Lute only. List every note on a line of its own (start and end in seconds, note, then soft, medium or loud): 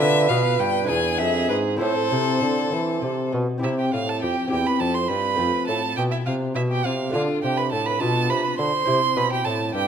0.00 0.26 D3 medium
0.00 0.84 B3 medium
0.00 0.84 F4 medium
0.00 0.85 B4 medium
0.30 0.56 B2 medium
0.59 0.86 G2 medium
0.84 1.75 D4 medium
0.84 1.75 E4 medium
0.84 1.76 B4 soft
0.89 1.16 E2 medium
1.19 1.46 F2 medium
1.50 1.77 G#2 medium
1.77 3.57 C4 medium
1.77 3.58 E4 medium
1.77 3.59 A4 medium
1.81 2.08 A2 medium
2.12 2.39 C3 medium
2.42 2.69 D3 medium
2.72 2.99 E3 soft
3.02 3.30 C3 medium
3.32 3.60 B2 medium
3.58 4.46 C4 soft
3.58 4.47 E4 soft
3.58 4.48 G4 soft
3.63 3.90 C3 soft
3.93 4.19 A2 soft
4.23 4.49 F2 soft
4.47 5.34 C4 soft
4.47 5.35 E4 soft
4.47 5.36 G4 soft
4.52 4.78 E2 soft
4.80 5.07 F2 soft
5.09 5.36 G2 soft
5.35 5.93 A3 soft
5.35 5.94 C4 soft
5.35 7.10 F4 soft
5.39 5.65 F2 soft
5.68 5.94 A2 soft
5.97 6.23 B2 soft
6.26 6.53 C3 soft
6.54 6.82 B2 soft
6.85 7.11 C3 soft
7.10 7.40 A3 soft
7.10 7.97 D4 soft
7.10 7.98 F4 soft
7.14 7.41 D3 soft
7.43 7.70 C3 soft
7.73 7.99 A2 soft
8.00 8.28 B2 soft
8.00 8.85 D4 soft
8.00 8.85 F4 soft
8.31 8.57 C3 soft
8.59 8.85 D3 medium
8.85 9.14 C3 soft
8.85 9.88 C4 soft
8.85 9.88 E4 soft
9.17 9.43 B2 soft
9.45 9.71 A2 soft
9.74 9.88 G2 soft